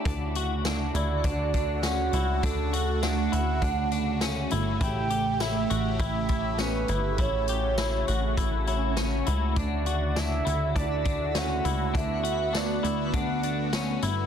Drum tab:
HH |xxxxxxxx|xxxxxxxx|xxxxxxxx|xxxxxxxx|
TB |--x---x-|--x---x-|--x---x-|--x---x-|
SD |--o---o-|--o---o-|--o---o-|--o---o-|
BD |o---oo--|o---o---|o---oo--|o---o---|

HH |xxxxxxxx|xxxxxxxx|
TB |--x---x-|--x---x-|
SD |--o---o-|--o---o-|
BD |o---oo--|o---o---|